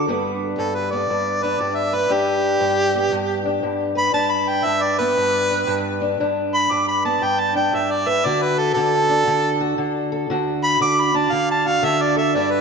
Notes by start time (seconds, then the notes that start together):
0.07 G2 G3 B3 D4 B4
0.58 G2 A4
0.75 B4
0.91 B3 D5
1.10 G2
1.42 D4 B4
1.60 G2 D5
1.76 E5
1.94 B4
2.09 G2 D4 G4
2.61 G2
2.95 B3
3.12 G2
3.45 D4
3.63 G2
3.95 B4 B5
4.13 G2 D4 A5
4.31 B5
4.48 G5
4.64 G2 E5
4.82 D5
4.98 B3 B4
5.17 G2
5.51 D4
5.67 G2
6.01 D4
6.20 G2 D4
6.54 B5
6.71 G2 D6
6.88 B5
7.05 B3 A5
7.22 G2 G5
7.40 A5
7.55 D4 G5
7.73 G2 E5
7.91 D5
8.07 B4 E5
8.25 D3 F#4 D5
8.42 B4
8.59 A4
8.74 D3 A4
9.09 D4
9.27 D3
9.61 F#4
9.78 D3
10.12 A4
10.30 D3 F#4
10.63 B5
10.80 D3 D6
11.01 B5
11.14 D4 A5
11.32 D3 F5
11.51 A5
11.66 F#4 F5
11.83 D3 E5
12.02 D5
12.16 A4 E5
12.35 G2 D4 D5
12.51 B4